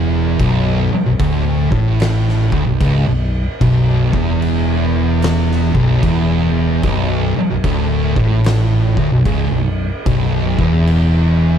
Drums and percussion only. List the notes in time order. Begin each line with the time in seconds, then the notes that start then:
0.39 kick, crash
1.19 kick, crash
1.72 kick
2.00 snare, crash
2.28 snare
2.52 kick
2.81 kick, crash
3.61 kick, crash
4.13 kick
4.42 crash
5.22 snare, crash
5.51 snare
5.75 kick
6.03 kick, crash
6.83 kick, crash
7.64 kick, crash
8.16 kick
8.44 snare, crash
8.97 kick
9.25 kick, crash
10.06 kick, crash
10.59 kick
10.87 crash